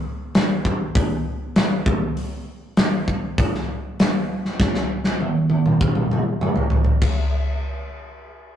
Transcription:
0.35 snare, open hi-hat
0.65 kick
0.95 kick, open hi-hat
1.56 snare, open hi-hat
1.86 kick
2.17 open hi-hat
2.77 snare, open hi-hat
3.08 kick
3.38 kick, open hi-hat
3.55 snare
4.00 snare, open hi-hat
4.45 snare
4.60 kick, snare
4.75 snare
5.04 snare
5.20 high tom
5.50 high tom
5.66 mid tom
5.81 kick
5.95 mid tom
6.11 mid tom
6.41 mid tom
6.56 floor tom
6.70 floor tom
6.85 floor tom
7.01 kick, crash

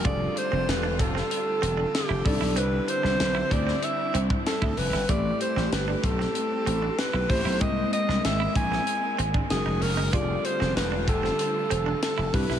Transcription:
0.04 F1 D3 G3 A3 C4 D4 F4 A4 D5, kick, closed hi-hat
0.36 C5, muted clean electric guitar stroke, closed hi-hat
0.52 F1 C4
0.68 E1 B4, snare, closed hi-hat
0.83 D4
0.99 F1 A4, muted clean electric guitar stroke, kick, closed hi-hat
1.15 C4, snare
1.31 muted clean electric guitar stroke, closed hi-hat
1.62 E1 C4, closed hi-hat
1.77 D4
1.95 G4, snare, closed hi-hat
2.09 F1 E4
2.25 C2 G3 C4 D4 D#4 E4 A4 D5, muted clean electric guitar stroke, kick, open hi-hat
2.33 E4
2.41 B1 E4, snare
2.56 C2 C4 B4, closed hi-hat
2.88 C5, muted clean electric guitar stroke, closed hi-hat
3.03 C2 D4, snare
3.20 B1, snare, closed hi-hat
3.35 E4
3.51 D2 D5, muted clean electric guitar stroke, kick, closed hi-hat
3.67 C4, snare
3.83 E5, muted clean electric guitar stroke, closed hi-hat
4.14 C2 C4, closed hi-hat
4.30 D4, kick
4.46 A4, snare, closed hi-hat
4.62 D2 E4, kick
4.77 F1 B4, muted clean electric guitar stroke, open hi-hat
4.93 G1 E4, snare
5.09 A1 G3 A3 C4 E4 G4 A4 D5, kick, closed hi-hat
5.40 C5, muted clean electric guitar stroke, closed hi-hat
5.56 A1 C4, snare
5.72 G1 B4, snare, closed hi-hat
5.88 D4
6.03 B1 A4, muted clean electric guitar stroke, kick, closed hi-hat
6.19 C4, snare
6.35 muted clean electric guitar stroke, closed hi-hat
6.66 A1 C4, closed hi-hat
6.82 D4
6.99 B4, snare, closed hi-hat
7.13 B1 E4
7.29 A1 A3 C4 E4 G4 C5, muted clean electric guitar stroke, kick, open hi-hat
7.45 B1 E4, snare
7.60 C2 G#3 A#3 C4 E4 A#4 D#5, kick, closed hi-hat
7.93 D#5, muted clean electric guitar stroke, closed hi-hat
8.09 C2 D4, snare
8.25 G#1 E5, snare, closed hi-hat
8.40 E4
8.55 A#1 G#5, muted clean electric guitar stroke, kick, closed hi-hat
8.72 C4, snare
8.87 muted clean electric guitar stroke, closed hi-hat
9.18 G#1 C4, closed hi-hat
9.34 D4, kick
9.50 F#1 D#3 G#3 C#4 D#4 F#4 G#4 A#4, snare, closed hi-hat
9.66 F1 D#4
9.81 F1 A#4, muted clean electric guitar stroke, open hi-hat
9.97 F#1 D#4
10.12 F1 D3 G3 A3 C4 D4 F4 G#4 D5, kick, closed hi-hat
10.21 A4
10.45 C5, muted clean electric guitar stroke, closed hi-hat
10.60 F1 C4, snare
10.76 E1 B4, snare, closed hi-hat
10.92 D4
11.08 F1 A4, muted clean electric guitar stroke, kick, closed hi-hat
11.23 C4, snare
11.39 muted clean electric guitar stroke, closed hi-hat
11.70 E1 C4, closed hi-hat
11.86 D4
12.03 A4, snare, closed hi-hat
12.18 F1 E4
12.33 C2 D3 G3 C4 D4 E4 B4, muted clean electric guitar stroke, kick, open hi-hat
12.49 B1 E4, snare

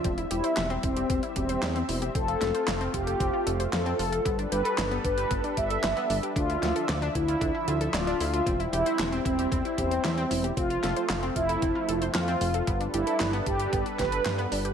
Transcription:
Already playing: F4 E5
0.04 E1 G3 C4, kick, closed hi-hat
0.18 E4, closed hi-hat
0.31 E1 E4 G4, closed hi-hat
0.44 C5, closed hi-hat
0.57 E1 E5, snare, clap, closed hi-hat
0.70 C4, closed hi-hat
0.83 E1 C4 E4, kick, closed hi-hat
0.97 G4, closed hi-hat
1.10 E1 C4, kick, closed hi-hat
1.23 E4, closed hi-hat
1.36 E1 C4 G4, kick, closed hi-hat
1.49 C5, closed hi-hat
1.62 E2 E5, snare, clap, closed hi-hat
1.76 C4, closed hi-hat
1.89 E1 E4, open hi-hat
2.02 G4, closed hi-hat
2.15 F1 A3 C4 F4 A4, kick, closed hi-hat
2.28 F4, closed hi-hat
2.41 F1 A4, snare, closed hi-hat
2.54 C5, closed hi-hat
2.67 F1 F5, snare, clap, closed hi-hat
2.81 C4, closed hi-hat
2.94 F1 F4 G4, kick, closed hi-hat
3.07 A4, closed hi-hat
3.20 F1 C4, kick, closed hi-hat
3.33 F4
3.46 F1 A4, closed hi-hat
3.60 C5, closed hi-hat
3.73 F2 A4 F5, snare, clap, closed hi-hat
3.86 C4, closed hi-hat
3.99 F1 F4, open hi-hat
4.12 A4, closed hi-hat
4.25 G1 G3 B3 D4 A4 B4, kick, closed hi-hat
4.39 D4, closed hi-hat
4.52 G1 G4 B4, closed hi-hat
4.65 A4, closed hi-hat
4.78 G1 B4, snare, clap, closed hi-hat
4.91 B3, closed hi-hat
5.04 G1 D4 B4, kick, closed hi-hat
5.18 G4, closed hi-hat
5.31 G1 B3, kick, closed hi-hat
5.44 D4, closed hi-hat
5.57 G1 G4 E5, kick, closed hi-hat
5.70 A4, closed hi-hat
5.83 G1 B4, snare, clap, closed hi-hat
5.97 B3, closed hi-hat
6.10 G1 D4, open hi-hat
6.23 G4, closed hi-hat
6.36 D2 D3 F3 D4 F4 E5, kick, closed hi-hat
6.49 E4, closed hi-hat
6.62 D2 F4, snare, closed hi-hat
6.76 A4, closed hi-hat
6.89 D2 D5, snare, clap, closed hi-hat
7.02 D4, closed hi-hat
7.15 D2 E4, kick, closed hi-hat
7.28 F4, closed hi-hat
7.41 D2 D4, kick, closed hi-hat
7.55 E4
7.67 D2 F4, closed hi-hat
7.81 A4, closed hi-hat
7.94 D1 F4 D5, snare, clap, closed hi-hat
8.07 D4, closed hi-hat
8.20 D2 E4, open hi-hat
8.33 F4, closed hi-hat
8.46 E1 G3 C4 E4, kick, closed hi-hat
8.60 E4, closed hi-hat
8.73 E1 E4 G4, closed hi-hat
8.86 C5, closed hi-hat
8.99 E1 E5, snare, clap, closed hi-hat
9.12 C4, closed hi-hat
9.25 E1 C4 E4, kick, closed hi-hat
9.39 G4, closed hi-hat
9.52 E1 C4, kick, closed hi-hat
9.65 E4, closed hi-hat
9.78 E1 C4 G4, kick, closed hi-hat
9.91 C5, closed hi-hat
10.04 E2 E5, snare, clap, closed hi-hat
10.18 C4, closed hi-hat
10.31 E1 E4, open hi-hat
10.44 G4, closed hi-hat
10.57 F1 F3 A3 C4 F4, kick, closed hi-hat
10.70 F4, closed hi-hat
10.83 F1 A4, snare, closed hi-hat
10.96 C5, closed hi-hat
11.10 F1 F5, snare, clap, closed hi-hat
11.23 C4, closed hi-hat
11.36 F1 E4 F4, kick, closed hi-hat
11.49 A4, closed hi-hat
11.62 F1 C4, kick, closed hi-hat
11.75 F4
11.88 F1 A4, closed hi-hat
12.02 C5, closed hi-hat
12.15 F2 F4 F5, snare, clap, closed hi-hat
12.28 C4, closed hi-hat
12.41 F1 F4, open hi-hat
12.54 A4, closed hi-hat
12.67 G1 G3 B3 D4 A4 B4, kick, closed hi-hat
12.81 D4, closed hi-hat
12.94 G1 E4 G4, closed hi-hat
13.07 A4, closed hi-hat
13.20 G1 B4, snare, clap, closed hi-hat
13.33 B3, closed hi-hat
13.46 G1 D4 G4, kick, closed hi-hat
13.60 G4, closed hi-hat
13.73 G1 B3, kick, closed hi-hat
13.86 D4, closed hi-hat
13.99 G1 G4 B4, kick, snare, closed hi-hat
14.12 A4, closed hi-hat
14.25 G2 B4, snare, clap, closed hi-hat
14.38 B3, closed hi-hat
14.52 G1 D4, open hi-hat
14.65 G4, closed hi-hat

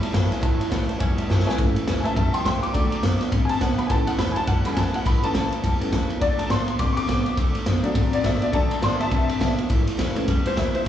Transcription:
Already playing: E2 A2 G3 A5
0.01 C#5 E5 A5, muted upright bass stroke, ride
0.12 F#2 A2 E3 F#3 A3 C#4 E4 C#5 E5 A5, snare, ride
0.29 E4 C#5 E5 G#5, muted upright bass stroke, snare, ride
0.41 A1 A2 E3 C#5 E5 A5, kick, ride
0.58 C#5 E5 A5, muted upright bass stroke, ride
0.70 C#2 A2 E3 F#3 A3 C#4 E4 C#5 E5 F#5, kick, snare, ride
0.88 C#4 E4 C#5 E5 A5, muted upright bass stroke, ride
0.99 E2 A2 G3 C#5 E5 G#5, kick, ride
1.17 C#5 E5 A5, muted upright bass stroke, ride
1.28 F#2 A2 E3 F#3 A3 C#4 E4 C#5 E5 A5, snare
1.39 snare
1.45 C#4 E4 C#5 E5 G#5, muted upright bass stroke, snare
1.57 A1 A2 E3 A3 C#4, kick, ride
1.76 muted upright bass stroke, ride
1.86 E2 A2 E3 F#3 A3 C#4 E4, snare, ride
2.00 E3 A3 C#4 E5 G#5
2.05 C#4 E4 A5, muted upright bass stroke, ride
2.15 F#2 A2 B2 G3 E5 A5, kick, ride
2.33 G5 C6, ride
2.44 C#2 A2 C#3 F#3 G5 C6, kick, snare, ride
2.63 D6, ride
2.72 D2 D3 F#3 A3 D4, kick, ride
2.92 muted upright bass stroke, ride
3.02 F#2 D3 A3 B3 D4 F#4, snare, ride
3.20 D4 F#4, muted upright bass stroke, snare, ride
3.32 A2 C#3 D3 C4, kick, ride
3.45 G#5
3.49 A5, muted upright bass stroke, ride
3.61 B1 B2 B3 F#5, kick, snare, ride
3.78 B5, muted upright bass stroke, ride
3.87 A1 A2 E3 A3 C#4 G#5, kick, ride
3.91 A5
4.07 F#5, ride
4.18 E2 A2 E3 F#3 A3 C#4 E4 B5, snare, ride
4.32 G#5, muted upright bass stroke
4.36 C#4 E4 A5, ride
4.47 E2 F#2 A2 G3 F#5, kick, ride
4.65 E3 A3 C#4 B5, ride
4.73 F#2 A2 E3 F#3 A3 G#5, kick, snare, ride
4.78 C#4 E4 A5
4.94 C#4 E4 F#5, muted upright bass stroke, ride
5.05 A1 A2 E3 B5, kick, ride
5.22 E3 A3 C#4 A5, muted upright bass stroke, ride
5.34 C#2 A2 E3 F#3 A3 C#4 E4, snare, ride
5.52 C#4 E4, muted upright bass stroke, ride
5.63 E2 A2 B2 G3, kick, ride
5.80 E3 A3 C#4, muted upright bass stroke, ride
5.92 E2 A2 C#3 F#3, kick, snare, ride
6.10 muted upright bass stroke, ride
6.20 D2 D3 F#3 A3 D4 D5, kick, ride
6.39 A5, muted upright bass stroke, ride
6.50 A2 D3 A3 B3 D4 F#4 C6, snare, ride
6.67 D4 F#4, muted upright bass stroke, ride
6.79 A2 B2 D3 C4 D6, kick, ride
6.93 C#6
6.97 D6, muted upright bass stroke, ride
7.07 B2 D3 A3 B3 D4 F#4, kick, snare, ride
7.26 D4 F#4, muted upright bass stroke, ride
7.36 D2 D3 A3, kick, ride
7.55 muted upright bass stroke, ride
7.66 F#2 D3 A3 B3 D4 F#4, snare, ride
7.83 F#3 A3 D4 F#4, muted upright bass stroke, ride
7.94 A2 D3 C4, kick, ride
8.13 D5, muted upright bass stroke, ride
8.23 B2 D3 A3 B3 D4 F#4 E5, kick, snare, ride
8.41 D4 F#4 D5, muted upright bass stroke, ride
8.52 D2 D3 F#3 A3 D4 A5, kick, ride
8.71 ride
8.81 A2 D3 A3 B3 D4 F#4 C6, snare, ride
9.00 D4 F#4 E5 A5, muted upright bass stroke, snare, ride
9.11 A2 B2 D3 C4, kick, ride
9.29 muted upright bass stroke, ride
9.39 B2 D3 A3 B3 D4 F#4, kick, snare, ride
9.58 D4 F#4, muted upright bass stroke, ride
9.69 A1 A2 E3, kick, ride
9.87 muted upright bass stroke, ride
9.97 C#2 A2 E3 F#3 A3 C#4 E4, snare, ride
10.15 E3 A3 C#4 E4, muted upright bass stroke, ride
10.27 E2 A2 G3, kick, ride
10.45 C5, muted upright bass stroke, ride
10.56 D2 A2 E3 F#3 A3 C#4 E4 E5, kick, snare, ride
10.73 C#4 E4 C5, muted upright bass stroke, ride
10.85 E2

